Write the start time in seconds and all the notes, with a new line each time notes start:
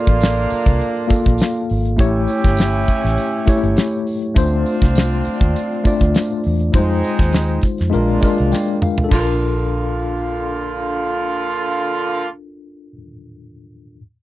Already playing: A#3 D4 F4 A4 D5
0.07 A1, kick, closed hi-hat
0.21 snare, closed hi-hat, tambourine
0.50 muted fingered electric bass stroke, closed hi-hat, tambourine
0.66 C2, kick, closed hi-hat
0.81 closed hi-hat
0.97 closed hi-hat
1.07 A#3 F4 A4 F5, muted fingered electric bass stroke, kick, closed hi-hat, tambourine
1.26 A#1, kick, closed hi-hat
1.38 snare, closed hi-hat, tambourine
1.57 closed hi-hat
1.70 G#1, open hi-hat
1.85 closed hi-hat
1.97 A1 A3 C#4 E4 G4 C#5, kick, closed hi-hat, tambourine
2.28 closed hi-hat, tambourine
2.44 G1, kick, snare, closed hi-hat
2.57 snare, closed hi-hat, tambourine
2.73 closed hi-hat
2.87 muted fingered electric bass stroke, kick, closed hi-hat, tambourine
3.04 A1, snare, closed hi-hat
3.18 closed hi-hat, tambourine
3.46 A3 E4 G4 C#5, muted fingered electric bass stroke, kick, closed hi-hat, tambourine
3.63 G1, closed hi-hat
3.77 snare, closed hi-hat, tambourine
4.07 open hi-hat, tambourine
4.22 closed hi-hat
4.34 D2 A3 C4 D4 F4 C5, kick, closed hi-hat, tambourine
4.66 closed hi-hat, tambourine
4.82 C2, kick, snare, closed hi-hat
4.95 snare, closed hi-hat, tambourine
5.25 muted fingered electric bass stroke, closed hi-hat, tambourine
5.41 D#2, kick, closed hi-hat
5.56 closed hi-hat, tambourine
5.71 closed hi-hat
5.84 A3 D4 F4 D5, muted fingered electric bass stroke, kick, closed hi-hat, tambourine
6.00 D2, kick, closed hi-hat
6.15 snare, closed hi-hat, tambourine
6.30 closed hi-hat
6.44 E2, open hi-hat
6.60 closed hi-hat
6.72 F2 G3 G#3 C4 D#4 F4 C5, kick, closed hi-hat, tambourine
6.78 G#3
6.90 closed hi-hat
7.03 closed hi-hat, tambourine
7.19 D#2, kick, snare, closed hi-hat
7.33 snare, closed hi-hat, tambourine
7.48 closed hi-hat
7.62 muted fingered electric bass stroke, kick, closed hi-hat, tambourine
7.78 F2, snare, closed hi-hat
7.90 A#1 G#3 A#3 D4 F4 A#4, closed hi-hat
8.08 closed hi-hat
8.21 G#3 D4 F4 A#4, kick, closed hi-hat, tambourine
8.38 C2, closed hi-hat
8.52 G5, snare, tambourine
8.82 F5, mid tom, tambourine
8.98 floor tom
9.04 A4
9.09 A#1 D3 A#3 D4 F4, kick, crash, tambourine
9.14 F4
9.19 A#4